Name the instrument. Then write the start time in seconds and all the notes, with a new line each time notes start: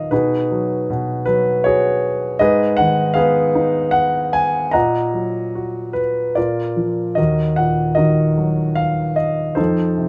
grand piano
Already playing: A#2 D#3 F#3 F#4 A#4 D#5 F5 F#5
0.11 B2 D#4 G#4 B4
0.52 F#3
0.90 B2
1.26 F#3 B4
1.64 F#4 G#4 C#5
2.39 G#2 G#4 B4 D#5
2.77 D#3 F#5
3.14 B3 G#4 B4 F5
3.55 D#4
3.91 F#5
4.33 G#5
4.71 A#2 D#5 F#5 A#5
5.14 F#3
5.55 F#4
5.93 B4
6.35 A#2 F4 A#4 D5
6.76 F3
7.15 D#2 F#4 A#4 D#5
7.56 A#2 F#5
7.95 D#3 F#4 A#4 D#5
8.38 F#3
8.75 F5
9.16 D#5
9.55 D#4 A4 C5
9.60 F2
9.98 C3